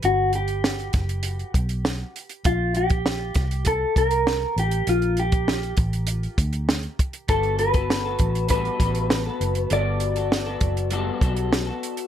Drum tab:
HH |x-xx-xxxxxxx--xx|x-xx--xxx-xx--xx|xxxx-xxxxxxx-xxx|xxxx--xxxxxx--xx|
SD |----o-o-----o---|----o-o-----o---|----o-------o---|----o-------o---|
BD |------o---o-----|o--o--o-o-o-----|---o--o---o---o-|o--o--o-o-o-----|

HH |x-xx--xxx-xx--xx|
SD |----o-------o---|
BD |------o---o-----|